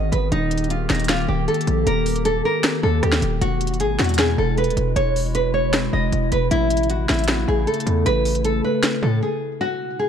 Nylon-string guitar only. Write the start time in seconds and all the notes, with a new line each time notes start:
0.12 B4
0.32 D#4
0.71 F4
0.90 D#4
1.09 F4
1.28 G4
1.48 A4
1.87 A#4
2.25 A4
2.45 A#4
2.83 A4
3.03 G4
3.41 F#4
3.80 G#4
3.99 F#4
4.19 G#4
4.38 A4
4.58 B4
4.96 C#5
5.35 B4
5.54 C#5
5.93 D#5
6.32 B4
6.51 E4
6.90 F#4
7.09 E4
7.28 F#4
7.48 G#4
7.67 A4
8.06 B4
8.45 A4
8.64 B4
9.03 A4
9.23 G#4
9.61 F#4
9.99 G#4